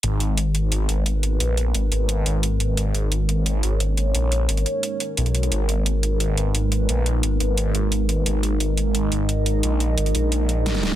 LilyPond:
<<
  \new Staff \with { instrumentName = "Analog synth pad" } { \time 4/4 \key gis \minor \tempo 4 = 175 << { b'1~ | b'1 | cis''1~ | cis''1 |
b'1~ | b'1 | dis''1~ | dis''1 | } \\ { <gis dis' ais'>1~ | <gis dis' ais'>1~ | <gis dis' ais'>1~ | <gis dis' ais'>1~ |
<gis dis' ais'>1~ | <gis dis' ais'>1~ | <gis dis' ais'>1~ | <gis dis' ais'>1 | } >> }
  \new Staff \with { instrumentName = "Detuned saw bass" } { \clef bass \time 4/4 \key gis \minor gis,,2~ gis,,8 gis,,4. | ais,,4 gis,,8 gis,,4 gis,,4. | gis,,2~ gis,,8 gis,,4. | ais,,4 gis,,8 r4. b,,4 |
gis,,2~ gis,,8 gis,,4. | ais,,4 gis,,8 gis,,4 gis,,4. | gis,,2~ gis,,8 gis,,4. | ais,,4 gis,,8 ais,,2~ ais,,8 | }
  \new DrumStaff \with { instrumentName = "Drums" } \drummode { \time 4/4 hh8 hh8 hh8 hh8 hh8 hh8 hh8 hh8 | hh8 hh8 hh8 hh8 hh8 hh8 hh8 hh8 | hh8 hh8 hh8 hh8 hh8 hh8 hh8 hh8 | hh8 hh8 hh16 hh16 hh8 hh8 hh8 hh16 hh16 hh16 hh16 |
hh8 hh8 hh8 hh8 hh8 hh8 hh8 hh8 | hh8 hh8 hh8 hh8 hh8 hh8 hh8 hh8 | hh8 hh8 hh8 hh8 hh8 hh8 hh8 hh8 | hh8 hh8 hh16 hh16 hh8 hh8 hh8 <hh sn>16 <hh sn>16 <hh sn>16 sn16 | }
>>